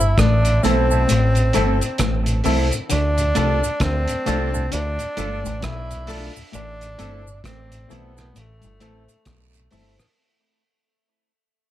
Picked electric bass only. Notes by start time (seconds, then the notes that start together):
Already playing: G1
0.18 A1
0.65 B1
1.11 A1
1.56 G1
2.00 A1
2.46 C2
2.92 D2
3.38 C2
3.81 D2
4.28 C2
4.74 D2
5.19 G1
5.46 A1
5.64 B1
6.55 A1
7.00 G1
7.45 A1
7.91 B1
8.36 A1
8.64 G1
8.83 A1
9.27 B1
9.73 G1